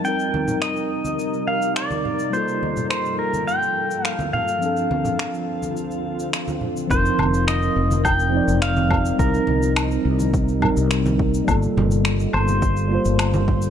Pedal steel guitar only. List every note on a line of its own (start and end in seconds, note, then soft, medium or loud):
0.05 0.58 G5 medium
0.62 1.47 D#5 medium
1.47 1.76 F5 medium
1.76 2.35 D5 medium
2.33 2.87 C5 medium
2.90 3.17 C5 medium
3.19 3.48 A#4 medium
3.47 4.06 G5 medium
4.06 4.29 F5 medium
4.33 6.29 F5 medium
6.91 7.44 C5 medium
7.48 8.06 D#5 loud
8.05 8.62 G5 loud
8.62 9.21 F5 medium
9.19 9.72 A#4 medium
12.34 13.70 C5 medium